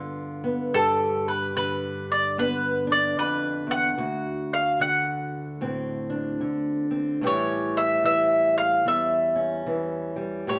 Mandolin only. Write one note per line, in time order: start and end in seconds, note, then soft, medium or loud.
0.74 1.31 A4 medium
1.28 1.54 B4 medium
1.57 2.11 B4 medium
2.12 2.39 D5 medium
2.39 2.92 B4 medium
2.92 3.18 D5 medium
3.19 3.74 B4 medium
3.71 4.53 F#5 medium
4.53 4.81 F5 medium
4.81 6.07 F#5 medium
7.27 7.80 C#5 medium
7.77 8.04 E5 medium
8.05 8.57 E5 medium
8.58 8.86 F5 medium
8.88 9.37 E5 medium
10.49 10.59 C#5 medium